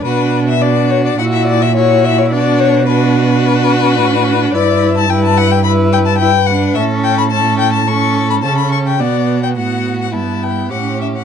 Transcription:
<<
  \new Staff \with { instrumentName = "Violin" } { \time 4/4 \key b \minor \tempo 4 = 107 b'8. e''16 d''8 cis''16 d''16 fis''16 e''16 d''16 e''16 cis''8 e''16 cis''16 | d''8 cis''8 b'2. | d''8. a''16 g''16 a''16 fis''16 g''16 b''8 g''16 a''16 g''8 fis''8 | e''8 g''16 b''16 a''8 g''16 a''16 cis'''8. b''16 a''16 b''16 cis'''16 g''16 |
d''8. g''16 fis''8. fis''16 a''8 g''8 fis''8 e''16 fis''16 | }
  \new Staff \with { instrumentName = "Violin" } { \time 4/4 \key b \minor fis'4 fis'4 fis'4 fis'4 | fis'4 fis'2. | b'4 b'4 b'4 b'4 | a'4 a'4 a'4 a'4 |
fis'4 fis'4 e'4 g'4 | }
  \new Staff \with { instrumentName = "Viola" } { \time 4/4 \key b \minor d'4 d'4 e'4 e'4 | d'4 d'2. | e'4 e'4 e'4 e'8 d'8 | cis'4 cis'4 cis'4 cis'4 |
b4 b4 b4 cis'4 | }
  \new Staff \with { instrumentName = "Cello" } { \clef bass \time 4/4 \key b \minor b,2 ais,2 | b,2. a,4 | g,1 | a,2. cis4 |
b,4 a,4 g,4 a,4 | }
>>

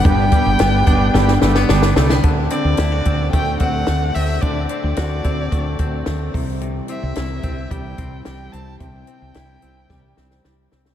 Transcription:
<<
  \new Staff \with { instrumentName = "Violin" } { \time 4/4 \key d \mixolydian \tempo 4 = 110 g''2. r4 | r8 d''4. g''8 fis''4 e''8 | d''8 d''2. r8 | r8 e''4. g''4 g''8 a''8 |
g''2.~ g''8 r8 | }
  \new Staff \with { instrumentName = "Transistor combo organ" } { \time 4/4 \key d \mixolydian <b d' g' b'>8 <b d' g' b'>8 <b d' g' a'>8 <b d' g' d''>8 <b d' g' b'>8 <b d' g' b'>8 <b d' g' d''>8 <b d' g' a'>8 | r1 | r1 | r1 |
r1 | }
  \new Staff \with { instrumentName = "Clean electric guitar" } { \time 4/4 \key d \mixolydian <g, d g b d'>8 g8 b8 d'8 d8 a16 b16 d'8 a16 b16 | d8 c'8 e'16 fis'16 c'8 a8 c'8 a8 c'8 | d8 c'8 fis'8 c'8 a8 c'8 a8 c8 | c8 c'8 e'8 c'8 g8 c'8 g8 c'8 |
c8 c'8 e'8 c'8 g8 c'8 g8 c'8 | }
  \new Staff \with { instrumentName = "Steel-string acoustic guitar" } { \time 4/4 \key d \mixolydian <g, d g b d'>8 <g b d'>8 <d g b d'>8 <g b d'>4 <g b d'>8 <d g b d'>4 | <d a c' fis'>8 <a c' fis'>8 <d a c' fis'>8 <a c' fis'>8 <d a c' fis'>4 <d a c' fis'>4 | <d a c' fis'>4 <d a c' fis'>8 <a c' fis'>8 <d a c' fis'>4 <d a c' fis'>8 <c e g c' e'>8~ | <c e g c' e'>8 <g c' e'>8 <e g c' e'>8 <g c' e'>8 <c e g c' e'>4 <e g c' e'>4 |
<c e g c' e'>8 <g e'>8 <e g e'>8 <g c' e'>8 <c e g c' e'>4 <e g c' e'>4 | }
  \new Staff \with { instrumentName = "Fretless electric bass" } { \clef bass \time 4/4 \key d \mixolydian g,,8 r16 g,,16 g,,8 g,,8 g,,8 g,,8 g,,8 c,8 | d,8 r16 d,16 d,8 d,8 d,8 d,8 d,8 d,8 | d,8 r16 d,16 d,8 d,8 d,8 d,8 d,8 c,8~ | c,8 r16 c,16 c,8 c,8 c,8 c,8 c,8 c,8 |
c,8 r16 c,16 c,8 c,8 c,8 c,8 c,8 c,8 | }
  \new DrumStaff \with { instrumentName = "Drums" } \drummode { \time 4/4 <hho hhp bd>8 <hho hhp bd>8 <hho hhp sn>8 <hho hhp bd>8 sn16 sn16 sn16 sn16 sn16 sn16 sn16 sn16 | <hh bd>8 hh8 <hh sn>8 <hh bd>8 <hh bd>8 <hh bd>8 <hh sn>8 hho8 | <hh bd>8 hh8 <hh sn>8 <hh bd>8 <hh bd>8 <hh bd>8 <hh sn>8 <hho bd>8 | hh8 hh8 <hh sn>8 <hh bd>8 <hh bd>8 <hh bd>8 <hh sn>8 hh8 |
<hh bd>8 hh8 <hh sn>8 hh8 <bd sn>8 sn16 sn16 sn8 sn16 sn16 | }
>>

